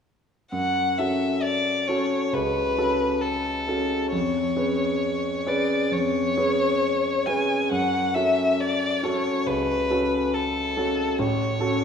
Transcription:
0.52 F#2 F#5
0.98 C#4 F#4 A4 E5
1.42 D5
1.88 C#4 F#4 A4 C#5
2.33 C#2 B4
2.78 C#4 F#4 A4
3.22 A4
3.68 C#4 F#4 A4
4.12 F2 C#5
4.56 C#4 G#4 B4
5.47 C#4 G#4 B4 D5
5.91 F2 C#5
6.37 C#4 G#4 B4
7.26 C#4 G#4 B4 G#5
7.71 F#2 F#5
8.14 C#4 F#4 A4 E5
8.60 D5
9.03 C#4 F#4 A4 C#5
9.46 C#2 B4
9.90 C#4 F#4 A4
10.34 A4
10.77 C#4 F#4 A4
11.18 A1 C#5
11.60 C#4 F#4 A4

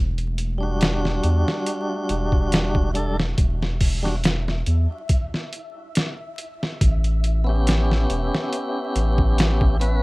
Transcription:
Already playing: E1 E5
0.18 closed hi-hat
0.38 closed hi-hat
0.58 G3 D4
0.63 F#4
0.81 snare, closed hi-hat
1.05 snare
1.24 E2, closed hi-hat
1.48 snare
1.66 closed hi-hat
2.09 E1, closed hi-hat
2.32 kick
2.52 snare, closed hi-hat
2.75 kick
2.94 G3 D4 A4, closed hi-hat
3.20 snare
3.38 E1, kick, closed hi-hat
3.62 snare
3.80 kick, open hi-hat
4.03 G3 D4 F#4, snare
4.24 snare, closed hi-hat
4.48 snare
4.66 E2, closed hi-hat
5.09 kick, closed hi-hat
5.34 snare
5.53 closed hi-hat
5.95 snare, closed hi-hat
6.38 closed hi-hat
6.63 snare
6.81 A1, kick, closed hi-hat
7.04 closed hi-hat
7.24 closed hi-hat
7.44 B3 C#4
7.49 G4
7.67 snare, closed hi-hat
7.92 snare
8.10 E1, closed hi-hat
8.35 snare
8.53 closed hi-hat
8.96 A1, closed hi-hat
9.18 kick
9.38 snare, closed hi-hat
9.61 kick
9.80 B3 C#4 B4, closed hi-hat

